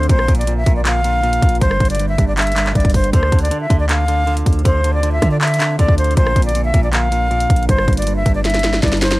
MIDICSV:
0, 0, Header, 1, 6, 480
1, 0, Start_track
1, 0, Tempo, 379747
1, 120, Time_signature, 4, 2, 24, 8
1, 11625, End_track
2, 0, Start_track
2, 0, Title_t, "Flute"
2, 0, Program_c, 0, 73
2, 121, Note_on_c, 0, 72, 105
2, 459, Note_off_c, 0, 72, 0
2, 478, Note_on_c, 0, 74, 77
2, 682, Note_off_c, 0, 74, 0
2, 721, Note_on_c, 0, 76, 86
2, 924, Note_off_c, 0, 76, 0
2, 961, Note_on_c, 0, 74, 81
2, 1062, Note_off_c, 0, 74, 0
2, 1074, Note_on_c, 0, 77, 101
2, 1986, Note_off_c, 0, 77, 0
2, 2037, Note_on_c, 0, 72, 106
2, 2377, Note_off_c, 0, 72, 0
2, 2403, Note_on_c, 0, 74, 88
2, 2605, Note_off_c, 0, 74, 0
2, 2638, Note_on_c, 0, 76, 88
2, 2842, Note_off_c, 0, 76, 0
2, 2879, Note_on_c, 0, 74, 82
2, 2981, Note_off_c, 0, 74, 0
2, 2995, Note_on_c, 0, 76, 97
2, 3448, Note_off_c, 0, 76, 0
2, 3480, Note_on_c, 0, 74, 85
2, 3683, Note_off_c, 0, 74, 0
2, 3724, Note_on_c, 0, 72, 86
2, 3925, Note_off_c, 0, 72, 0
2, 3960, Note_on_c, 0, 72, 101
2, 4298, Note_off_c, 0, 72, 0
2, 4325, Note_on_c, 0, 74, 73
2, 4526, Note_off_c, 0, 74, 0
2, 4559, Note_on_c, 0, 76, 81
2, 4763, Note_off_c, 0, 76, 0
2, 4800, Note_on_c, 0, 74, 87
2, 4902, Note_off_c, 0, 74, 0
2, 4925, Note_on_c, 0, 77, 100
2, 5483, Note_off_c, 0, 77, 0
2, 5876, Note_on_c, 0, 72, 102
2, 6216, Note_off_c, 0, 72, 0
2, 6243, Note_on_c, 0, 74, 82
2, 6445, Note_off_c, 0, 74, 0
2, 6476, Note_on_c, 0, 76, 92
2, 6681, Note_off_c, 0, 76, 0
2, 6715, Note_on_c, 0, 74, 78
2, 6818, Note_off_c, 0, 74, 0
2, 6838, Note_on_c, 0, 76, 91
2, 7290, Note_off_c, 0, 76, 0
2, 7317, Note_on_c, 0, 74, 95
2, 7522, Note_off_c, 0, 74, 0
2, 7563, Note_on_c, 0, 72, 85
2, 7765, Note_off_c, 0, 72, 0
2, 7800, Note_on_c, 0, 72, 104
2, 8138, Note_off_c, 0, 72, 0
2, 8158, Note_on_c, 0, 74, 77
2, 8362, Note_off_c, 0, 74, 0
2, 8402, Note_on_c, 0, 76, 84
2, 8604, Note_off_c, 0, 76, 0
2, 8643, Note_on_c, 0, 74, 80
2, 8743, Note_off_c, 0, 74, 0
2, 8760, Note_on_c, 0, 77, 105
2, 9669, Note_off_c, 0, 77, 0
2, 9719, Note_on_c, 0, 72, 111
2, 10057, Note_off_c, 0, 72, 0
2, 10082, Note_on_c, 0, 74, 84
2, 10284, Note_off_c, 0, 74, 0
2, 10314, Note_on_c, 0, 76, 93
2, 10520, Note_off_c, 0, 76, 0
2, 10553, Note_on_c, 0, 74, 84
2, 10658, Note_off_c, 0, 74, 0
2, 10673, Note_on_c, 0, 76, 97
2, 11127, Note_off_c, 0, 76, 0
2, 11158, Note_on_c, 0, 74, 86
2, 11362, Note_off_c, 0, 74, 0
2, 11400, Note_on_c, 0, 72, 83
2, 11603, Note_off_c, 0, 72, 0
2, 11625, End_track
3, 0, Start_track
3, 0, Title_t, "Ambient pad"
3, 0, Program_c, 1, 92
3, 0, Note_on_c, 1, 50, 79
3, 120, Note_on_c, 1, 58, 72
3, 120, Note_on_c, 1, 65, 87
3, 2020, Note_off_c, 1, 65, 0
3, 2040, Note_on_c, 1, 67, 86
3, 3908, Note_off_c, 1, 50, 0
3, 3922, Note_off_c, 1, 58, 0
3, 3941, Note_off_c, 1, 67, 0
3, 3962, Note_on_c, 1, 65, 83
3, 3963, Note_on_c, 1, 50, 75
3, 3963, Note_on_c, 1, 60, 74
3, 7763, Note_off_c, 1, 60, 0
3, 7763, Note_off_c, 1, 65, 0
3, 7801, Note_on_c, 1, 58, 72
3, 7802, Note_on_c, 1, 65, 89
3, 9702, Note_off_c, 1, 65, 0
3, 9722, Note_on_c, 1, 67, 86
3, 11591, Note_off_c, 1, 50, 0
3, 11602, Note_off_c, 1, 58, 0
3, 11622, Note_off_c, 1, 67, 0
3, 11625, End_track
4, 0, Start_track
4, 0, Title_t, "Clean electric guitar"
4, 0, Program_c, 2, 27
4, 116, Note_on_c, 2, 46, 93
4, 342, Note_off_c, 2, 46, 0
4, 357, Note_on_c, 2, 46, 76
4, 587, Note_off_c, 2, 46, 0
4, 602, Note_on_c, 2, 46, 74
4, 827, Note_off_c, 2, 46, 0
4, 843, Note_on_c, 2, 46, 91
4, 1055, Note_off_c, 2, 46, 0
4, 1070, Note_on_c, 2, 46, 80
4, 1304, Note_off_c, 2, 46, 0
4, 1319, Note_on_c, 2, 46, 74
4, 1543, Note_off_c, 2, 46, 0
4, 1558, Note_on_c, 2, 46, 91
4, 2038, Note_on_c, 2, 43, 96
4, 2039, Note_off_c, 2, 46, 0
4, 2265, Note_off_c, 2, 43, 0
4, 2280, Note_on_c, 2, 43, 80
4, 2506, Note_off_c, 2, 43, 0
4, 2521, Note_on_c, 2, 43, 75
4, 2746, Note_off_c, 2, 43, 0
4, 2762, Note_on_c, 2, 43, 92
4, 2982, Note_off_c, 2, 43, 0
4, 2997, Note_on_c, 2, 43, 79
4, 3220, Note_off_c, 2, 43, 0
4, 3235, Note_on_c, 2, 43, 74
4, 3460, Note_off_c, 2, 43, 0
4, 3475, Note_on_c, 2, 43, 92
4, 3957, Note_off_c, 2, 43, 0
4, 3961, Note_on_c, 2, 50, 95
4, 4190, Note_off_c, 2, 50, 0
4, 4205, Note_on_c, 2, 50, 78
4, 4423, Note_off_c, 2, 50, 0
4, 4439, Note_on_c, 2, 50, 77
4, 4660, Note_off_c, 2, 50, 0
4, 4675, Note_on_c, 2, 50, 87
4, 4904, Note_off_c, 2, 50, 0
4, 4919, Note_on_c, 2, 50, 77
4, 5144, Note_off_c, 2, 50, 0
4, 5160, Note_on_c, 2, 50, 73
4, 5384, Note_off_c, 2, 50, 0
4, 5399, Note_on_c, 2, 50, 90
4, 5863, Note_off_c, 2, 50, 0
4, 5878, Note_on_c, 2, 50, 91
4, 6107, Note_off_c, 2, 50, 0
4, 6122, Note_on_c, 2, 50, 74
4, 6343, Note_off_c, 2, 50, 0
4, 6358, Note_on_c, 2, 50, 77
4, 6585, Note_off_c, 2, 50, 0
4, 6600, Note_on_c, 2, 50, 84
4, 6825, Note_off_c, 2, 50, 0
4, 6840, Note_on_c, 2, 50, 74
4, 7056, Note_off_c, 2, 50, 0
4, 7072, Note_on_c, 2, 50, 77
4, 7303, Note_off_c, 2, 50, 0
4, 7319, Note_on_c, 2, 50, 97
4, 7799, Note_off_c, 2, 50, 0
4, 7799, Note_on_c, 2, 46, 91
4, 8021, Note_off_c, 2, 46, 0
4, 8036, Note_on_c, 2, 46, 73
4, 8266, Note_off_c, 2, 46, 0
4, 8281, Note_on_c, 2, 46, 74
4, 8506, Note_off_c, 2, 46, 0
4, 8521, Note_on_c, 2, 46, 93
4, 8733, Note_off_c, 2, 46, 0
4, 8748, Note_on_c, 2, 46, 80
4, 8983, Note_off_c, 2, 46, 0
4, 8998, Note_on_c, 2, 46, 71
4, 9222, Note_off_c, 2, 46, 0
4, 9237, Note_on_c, 2, 46, 91
4, 9718, Note_off_c, 2, 46, 0
4, 9719, Note_on_c, 2, 43, 97
4, 9945, Note_off_c, 2, 43, 0
4, 9960, Note_on_c, 2, 43, 83
4, 10185, Note_off_c, 2, 43, 0
4, 10200, Note_on_c, 2, 43, 76
4, 10425, Note_off_c, 2, 43, 0
4, 10441, Note_on_c, 2, 43, 92
4, 10662, Note_off_c, 2, 43, 0
4, 10677, Note_on_c, 2, 43, 80
4, 10898, Note_off_c, 2, 43, 0
4, 10914, Note_on_c, 2, 43, 73
4, 11142, Note_off_c, 2, 43, 0
4, 11158, Note_on_c, 2, 43, 94
4, 11625, Note_off_c, 2, 43, 0
4, 11625, End_track
5, 0, Start_track
5, 0, Title_t, "808-style bass"
5, 0, Program_c, 3, 38
5, 120, Note_on_c, 3, 34, 116
5, 350, Note_off_c, 3, 34, 0
5, 358, Note_on_c, 3, 34, 113
5, 820, Note_off_c, 3, 34, 0
5, 839, Note_on_c, 3, 34, 108
5, 1761, Note_off_c, 3, 34, 0
5, 1800, Note_on_c, 3, 34, 103
5, 2030, Note_off_c, 3, 34, 0
5, 2040, Note_on_c, 3, 31, 120
5, 2271, Note_off_c, 3, 31, 0
5, 2280, Note_on_c, 3, 31, 109
5, 2740, Note_off_c, 3, 31, 0
5, 2760, Note_on_c, 3, 31, 109
5, 3451, Note_off_c, 3, 31, 0
5, 3481, Note_on_c, 3, 31, 109
5, 3941, Note_off_c, 3, 31, 0
5, 3960, Note_on_c, 3, 38, 118
5, 4191, Note_off_c, 3, 38, 0
5, 4200, Note_on_c, 3, 38, 110
5, 4430, Note_off_c, 3, 38, 0
5, 4679, Note_on_c, 3, 38, 107
5, 5601, Note_off_c, 3, 38, 0
5, 5640, Note_on_c, 3, 38, 104
5, 5870, Note_off_c, 3, 38, 0
5, 5881, Note_on_c, 3, 38, 118
5, 6571, Note_off_c, 3, 38, 0
5, 6600, Note_on_c, 3, 50, 108
5, 7291, Note_off_c, 3, 50, 0
5, 7321, Note_on_c, 3, 38, 110
5, 7431, Note_off_c, 3, 38, 0
5, 7439, Note_on_c, 3, 38, 109
5, 7785, Note_off_c, 3, 38, 0
5, 7800, Note_on_c, 3, 34, 115
5, 8030, Note_off_c, 3, 34, 0
5, 8040, Note_on_c, 3, 34, 111
5, 8501, Note_off_c, 3, 34, 0
5, 8519, Note_on_c, 3, 34, 113
5, 9441, Note_off_c, 3, 34, 0
5, 9479, Note_on_c, 3, 34, 104
5, 9710, Note_off_c, 3, 34, 0
5, 9719, Note_on_c, 3, 31, 111
5, 9950, Note_off_c, 3, 31, 0
5, 9959, Note_on_c, 3, 31, 112
5, 10420, Note_off_c, 3, 31, 0
5, 10439, Note_on_c, 3, 31, 108
5, 11130, Note_off_c, 3, 31, 0
5, 11160, Note_on_c, 3, 31, 113
5, 11621, Note_off_c, 3, 31, 0
5, 11625, End_track
6, 0, Start_track
6, 0, Title_t, "Drums"
6, 39, Note_on_c, 9, 42, 46
6, 119, Note_off_c, 9, 42, 0
6, 119, Note_on_c, 9, 42, 89
6, 120, Note_on_c, 9, 36, 113
6, 239, Note_on_c, 9, 37, 100
6, 245, Note_off_c, 9, 42, 0
6, 246, Note_off_c, 9, 36, 0
6, 358, Note_on_c, 9, 42, 72
6, 359, Note_on_c, 9, 36, 106
6, 365, Note_off_c, 9, 37, 0
6, 438, Note_off_c, 9, 42, 0
6, 438, Note_on_c, 9, 42, 70
6, 485, Note_off_c, 9, 36, 0
6, 518, Note_off_c, 9, 42, 0
6, 518, Note_on_c, 9, 42, 70
6, 598, Note_off_c, 9, 42, 0
6, 598, Note_on_c, 9, 42, 87
6, 724, Note_off_c, 9, 42, 0
6, 838, Note_on_c, 9, 42, 83
6, 839, Note_on_c, 9, 36, 103
6, 964, Note_off_c, 9, 42, 0
6, 966, Note_off_c, 9, 36, 0
6, 1078, Note_on_c, 9, 42, 80
6, 1079, Note_on_c, 9, 39, 118
6, 1205, Note_off_c, 9, 42, 0
6, 1206, Note_off_c, 9, 39, 0
6, 1319, Note_on_c, 9, 42, 73
6, 1445, Note_off_c, 9, 42, 0
6, 1560, Note_on_c, 9, 42, 41
6, 1680, Note_off_c, 9, 42, 0
6, 1680, Note_on_c, 9, 42, 73
6, 1800, Note_on_c, 9, 36, 105
6, 1801, Note_off_c, 9, 42, 0
6, 1801, Note_on_c, 9, 42, 78
6, 1881, Note_off_c, 9, 42, 0
6, 1881, Note_on_c, 9, 42, 64
6, 1926, Note_off_c, 9, 36, 0
6, 1961, Note_off_c, 9, 42, 0
6, 1961, Note_on_c, 9, 42, 46
6, 2040, Note_on_c, 9, 36, 115
6, 2041, Note_off_c, 9, 42, 0
6, 2041, Note_on_c, 9, 42, 92
6, 2161, Note_on_c, 9, 37, 97
6, 2167, Note_off_c, 9, 36, 0
6, 2167, Note_off_c, 9, 42, 0
6, 2280, Note_on_c, 9, 36, 108
6, 2280, Note_on_c, 9, 42, 51
6, 2287, Note_off_c, 9, 37, 0
6, 2340, Note_off_c, 9, 42, 0
6, 2340, Note_on_c, 9, 42, 64
6, 2401, Note_off_c, 9, 42, 0
6, 2401, Note_on_c, 9, 42, 76
6, 2406, Note_off_c, 9, 36, 0
6, 2461, Note_off_c, 9, 42, 0
6, 2461, Note_on_c, 9, 42, 85
6, 2521, Note_off_c, 9, 42, 0
6, 2521, Note_on_c, 9, 42, 85
6, 2648, Note_off_c, 9, 42, 0
6, 2760, Note_on_c, 9, 36, 106
6, 2760, Note_on_c, 9, 42, 83
6, 2886, Note_off_c, 9, 36, 0
6, 2886, Note_off_c, 9, 42, 0
6, 3000, Note_on_c, 9, 42, 68
6, 3001, Note_on_c, 9, 39, 120
6, 3061, Note_off_c, 9, 42, 0
6, 3061, Note_on_c, 9, 42, 70
6, 3121, Note_off_c, 9, 42, 0
6, 3121, Note_on_c, 9, 42, 70
6, 3128, Note_off_c, 9, 39, 0
6, 3181, Note_off_c, 9, 42, 0
6, 3181, Note_on_c, 9, 42, 68
6, 3240, Note_on_c, 9, 39, 99
6, 3241, Note_off_c, 9, 42, 0
6, 3241, Note_on_c, 9, 42, 72
6, 3359, Note_off_c, 9, 39, 0
6, 3359, Note_on_c, 9, 39, 79
6, 3360, Note_off_c, 9, 42, 0
6, 3360, Note_on_c, 9, 42, 40
6, 3480, Note_off_c, 9, 42, 0
6, 3480, Note_on_c, 9, 42, 58
6, 3481, Note_on_c, 9, 36, 92
6, 3486, Note_off_c, 9, 39, 0
6, 3540, Note_off_c, 9, 42, 0
6, 3540, Note_on_c, 9, 42, 57
6, 3599, Note_off_c, 9, 36, 0
6, 3599, Note_on_c, 9, 36, 102
6, 3600, Note_off_c, 9, 42, 0
6, 3600, Note_on_c, 9, 42, 60
6, 3660, Note_off_c, 9, 42, 0
6, 3660, Note_on_c, 9, 42, 59
6, 3720, Note_off_c, 9, 36, 0
6, 3720, Note_off_c, 9, 42, 0
6, 3720, Note_on_c, 9, 36, 103
6, 3720, Note_on_c, 9, 42, 67
6, 3720, Note_on_c, 9, 46, 84
6, 3841, Note_off_c, 9, 42, 0
6, 3841, Note_on_c, 9, 42, 64
6, 3846, Note_off_c, 9, 36, 0
6, 3846, Note_off_c, 9, 46, 0
6, 3960, Note_on_c, 9, 36, 111
6, 3961, Note_off_c, 9, 42, 0
6, 3961, Note_on_c, 9, 42, 92
6, 4081, Note_on_c, 9, 37, 97
6, 4087, Note_off_c, 9, 36, 0
6, 4087, Note_off_c, 9, 42, 0
6, 4200, Note_on_c, 9, 36, 105
6, 4201, Note_on_c, 9, 42, 74
6, 4207, Note_off_c, 9, 37, 0
6, 4280, Note_off_c, 9, 42, 0
6, 4280, Note_on_c, 9, 42, 72
6, 4326, Note_off_c, 9, 36, 0
6, 4360, Note_off_c, 9, 42, 0
6, 4360, Note_on_c, 9, 42, 71
6, 4440, Note_off_c, 9, 42, 0
6, 4440, Note_on_c, 9, 42, 90
6, 4567, Note_off_c, 9, 42, 0
6, 4680, Note_on_c, 9, 36, 104
6, 4680, Note_on_c, 9, 42, 81
6, 4806, Note_off_c, 9, 36, 0
6, 4806, Note_off_c, 9, 42, 0
6, 4920, Note_on_c, 9, 42, 81
6, 4921, Note_on_c, 9, 39, 121
6, 5047, Note_off_c, 9, 42, 0
6, 5048, Note_off_c, 9, 39, 0
6, 5161, Note_on_c, 9, 42, 72
6, 5287, Note_off_c, 9, 42, 0
6, 5400, Note_on_c, 9, 42, 42
6, 5521, Note_off_c, 9, 42, 0
6, 5521, Note_on_c, 9, 42, 73
6, 5640, Note_on_c, 9, 36, 101
6, 5641, Note_off_c, 9, 42, 0
6, 5641, Note_on_c, 9, 42, 78
6, 5721, Note_off_c, 9, 42, 0
6, 5721, Note_on_c, 9, 42, 63
6, 5766, Note_off_c, 9, 36, 0
6, 5800, Note_off_c, 9, 42, 0
6, 5800, Note_on_c, 9, 42, 46
6, 5880, Note_on_c, 9, 36, 111
6, 5881, Note_off_c, 9, 42, 0
6, 5881, Note_on_c, 9, 42, 95
6, 6007, Note_off_c, 9, 36, 0
6, 6008, Note_off_c, 9, 42, 0
6, 6121, Note_on_c, 9, 42, 83
6, 6248, Note_off_c, 9, 42, 0
6, 6360, Note_on_c, 9, 42, 89
6, 6487, Note_off_c, 9, 42, 0
6, 6600, Note_on_c, 9, 36, 102
6, 6601, Note_on_c, 9, 37, 71
6, 6601, Note_on_c, 9, 42, 83
6, 6726, Note_off_c, 9, 36, 0
6, 6727, Note_off_c, 9, 37, 0
6, 6728, Note_off_c, 9, 42, 0
6, 6841, Note_on_c, 9, 42, 50
6, 6842, Note_on_c, 9, 39, 122
6, 6920, Note_off_c, 9, 42, 0
6, 6920, Note_on_c, 9, 42, 67
6, 6968, Note_off_c, 9, 39, 0
6, 7001, Note_off_c, 9, 42, 0
6, 7001, Note_on_c, 9, 42, 85
6, 7079, Note_off_c, 9, 42, 0
6, 7079, Note_on_c, 9, 39, 102
6, 7079, Note_on_c, 9, 42, 72
6, 7206, Note_off_c, 9, 39, 0
6, 7206, Note_off_c, 9, 42, 0
6, 7320, Note_on_c, 9, 36, 88
6, 7320, Note_on_c, 9, 42, 69
6, 7439, Note_off_c, 9, 36, 0
6, 7439, Note_on_c, 9, 36, 101
6, 7446, Note_off_c, 9, 42, 0
6, 7560, Note_on_c, 9, 42, 79
6, 7566, Note_off_c, 9, 36, 0
6, 7640, Note_off_c, 9, 42, 0
6, 7640, Note_on_c, 9, 42, 63
6, 7720, Note_off_c, 9, 42, 0
6, 7720, Note_on_c, 9, 42, 47
6, 7800, Note_off_c, 9, 42, 0
6, 7800, Note_on_c, 9, 36, 115
6, 7800, Note_on_c, 9, 42, 92
6, 7921, Note_on_c, 9, 37, 101
6, 7926, Note_off_c, 9, 36, 0
6, 7926, Note_off_c, 9, 42, 0
6, 8039, Note_on_c, 9, 36, 102
6, 8040, Note_on_c, 9, 42, 70
6, 8047, Note_off_c, 9, 37, 0
6, 8119, Note_off_c, 9, 42, 0
6, 8119, Note_on_c, 9, 42, 73
6, 8166, Note_off_c, 9, 36, 0
6, 8200, Note_off_c, 9, 42, 0
6, 8200, Note_on_c, 9, 42, 70
6, 8279, Note_off_c, 9, 42, 0
6, 8279, Note_on_c, 9, 42, 86
6, 8406, Note_off_c, 9, 42, 0
6, 8518, Note_on_c, 9, 42, 82
6, 8519, Note_on_c, 9, 36, 100
6, 8645, Note_off_c, 9, 42, 0
6, 8646, Note_off_c, 9, 36, 0
6, 8759, Note_on_c, 9, 42, 78
6, 8760, Note_on_c, 9, 39, 121
6, 8885, Note_off_c, 9, 42, 0
6, 8886, Note_off_c, 9, 39, 0
6, 9000, Note_on_c, 9, 42, 69
6, 9126, Note_off_c, 9, 42, 0
6, 9239, Note_on_c, 9, 42, 43
6, 9359, Note_off_c, 9, 42, 0
6, 9359, Note_on_c, 9, 42, 72
6, 9479, Note_on_c, 9, 36, 102
6, 9480, Note_off_c, 9, 42, 0
6, 9480, Note_on_c, 9, 42, 78
6, 9560, Note_off_c, 9, 42, 0
6, 9560, Note_on_c, 9, 42, 66
6, 9606, Note_off_c, 9, 36, 0
6, 9640, Note_off_c, 9, 42, 0
6, 9640, Note_on_c, 9, 42, 45
6, 9720, Note_off_c, 9, 42, 0
6, 9720, Note_on_c, 9, 36, 115
6, 9720, Note_on_c, 9, 42, 92
6, 9840, Note_on_c, 9, 37, 97
6, 9846, Note_off_c, 9, 36, 0
6, 9846, Note_off_c, 9, 42, 0
6, 9959, Note_on_c, 9, 36, 105
6, 9959, Note_on_c, 9, 42, 54
6, 9967, Note_off_c, 9, 37, 0
6, 10019, Note_off_c, 9, 42, 0
6, 10019, Note_on_c, 9, 42, 63
6, 10079, Note_off_c, 9, 42, 0
6, 10079, Note_on_c, 9, 42, 77
6, 10085, Note_off_c, 9, 36, 0
6, 10138, Note_off_c, 9, 42, 0
6, 10138, Note_on_c, 9, 42, 85
6, 10199, Note_off_c, 9, 42, 0
6, 10199, Note_on_c, 9, 42, 86
6, 10325, Note_off_c, 9, 42, 0
6, 10438, Note_on_c, 9, 42, 84
6, 10439, Note_on_c, 9, 36, 101
6, 10565, Note_off_c, 9, 36, 0
6, 10565, Note_off_c, 9, 42, 0
6, 10679, Note_on_c, 9, 38, 66
6, 10679, Note_on_c, 9, 42, 68
6, 10739, Note_off_c, 9, 42, 0
6, 10739, Note_on_c, 9, 42, 71
6, 10800, Note_off_c, 9, 38, 0
6, 10800, Note_off_c, 9, 42, 0
6, 10800, Note_on_c, 9, 38, 62
6, 10800, Note_on_c, 9, 42, 68
6, 10861, Note_off_c, 9, 42, 0
6, 10861, Note_on_c, 9, 42, 66
6, 10920, Note_off_c, 9, 38, 0
6, 10920, Note_off_c, 9, 42, 0
6, 10920, Note_on_c, 9, 38, 80
6, 10920, Note_on_c, 9, 42, 72
6, 11039, Note_off_c, 9, 38, 0
6, 11039, Note_off_c, 9, 42, 0
6, 11039, Note_on_c, 9, 38, 73
6, 11039, Note_on_c, 9, 42, 41
6, 11160, Note_off_c, 9, 38, 0
6, 11160, Note_off_c, 9, 42, 0
6, 11160, Note_on_c, 9, 36, 91
6, 11160, Note_on_c, 9, 38, 95
6, 11160, Note_on_c, 9, 42, 58
6, 11220, Note_off_c, 9, 42, 0
6, 11220, Note_on_c, 9, 42, 57
6, 11280, Note_off_c, 9, 38, 0
6, 11280, Note_off_c, 9, 42, 0
6, 11280, Note_on_c, 9, 38, 90
6, 11280, Note_on_c, 9, 42, 59
6, 11286, Note_off_c, 9, 36, 0
6, 11340, Note_off_c, 9, 42, 0
6, 11340, Note_on_c, 9, 42, 57
6, 11400, Note_off_c, 9, 38, 0
6, 11400, Note_off_c, 9, 42, 0
6, 11400, Note_on_c, 9, 38, 117
6, 11400, Note_on_c, 9, 42, 66
6, 11400, Note_on_c, 9, 46, 81
6, 11520, Note_off_c, 9, 38, 0
6, 11520, Note_off_c, 9, 42, 0
6, 11520, Note_on_c, 9, 38, 102
6, 11520, Note_on_c, 9, 42, 64
6, 11527, Note_off_c, 9, 46, 0
6, 11625, Note_off_c, 9, 38, 0
6, 11625, Note_off_c, 9, 42, 0
6, 11625, End_track
0, 0, End_of_file